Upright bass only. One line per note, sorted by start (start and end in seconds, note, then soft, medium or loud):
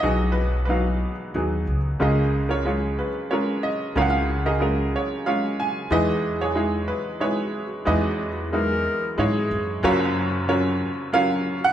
0.03 1.03 B1 medium
1.34 1.64 D#2 medium
1.67 1.97 C#2 medium
2.00 3.00 C#2 medium
3.96 4.95 C#2 medium
5.90 6.90 E2 medium
7.87 8.86 E2 medium
9.18 9.47 G#2 medium
9.51 9.80 F#2 medium
9.84 10.82 F#2 medium